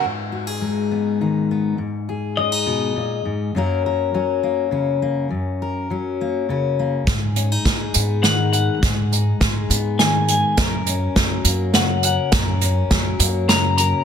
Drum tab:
HH |------|------|------|------|
SD |------|------|------|------|
BD |------|------|------|------|

HH |xxxxxx|xxxxxx|xxxxxx|xxxxxx|
SD |o-o-o-|o-o-o-|o-o-o-|o-o-o-|
BD |o-o---|o-o---|o-o---|o-o---|